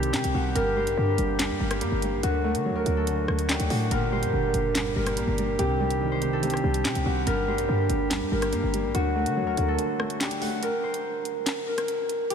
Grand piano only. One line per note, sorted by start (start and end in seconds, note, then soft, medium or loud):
0.00 0.57 C3 loud
0.00 0.35 D#3 medium
0.00 0.35 G3 medium
0.14 0.56 C4 medium
0.35 0.56 G3 medium
0.55 1.17 G2 loud
0.77 1.59 G3 medium
0.98 2.02 D3 medium
1.19 1.38 G2 medium
1.40 2.23 G2 medium
1.60 2.01 G3 medium
1.81 2.23 A#3 medium
2.03 2.23 G3 medium
2.23 2.85 D3 loud
2.44 3.27 A3 loud
2.65 3.70 F#3 medium
2.86 3.06 D3 medium
3.07 3.91 D3 medium
3.28 3.69 A3 medium
3.49 3.91 D4 medium
3.70 3.91 A3 medium
3.91 4.96 A#2 medium
4.12 4.95 G3 medium
4.33 5.38 D3 loud
4.75 5.59 G2 medium
4.96 5.37 G3 medium
5.17 5.59 A#3 medium
5.38 5.59 G3 medium
5.59 6.20 C3 loud
5.80 6.62 G3 medium
6.01 7.06 D#3 medium
6.22 6.41 C3 medium
6.43 7.27 C3 loud
6.64 7.04 G3 medium
6.85 7.27 C4 loud
7.06 7.27 G3 medium
7.27 7.88 G2 loud
7.48 8.30 G3 medium
7.69 8.74 D3 medium
7.90 8.09 G2 medium
8.11 8.95 G2 medium
8.32 8.72 G3 medium
8.53 8.95 A#3 loud
8.74 8.95 G3 medium
8.95 9.56 D3 loud
9.15 9.98 A3 medium
9.37 10.42 F#3 medium
9.58 9.77 D3 medium
9.79 10.63 D3 loud
9.99 10.40 A3 medium
10.21 10.63 D4 loud
10.42 10.63 A3 medium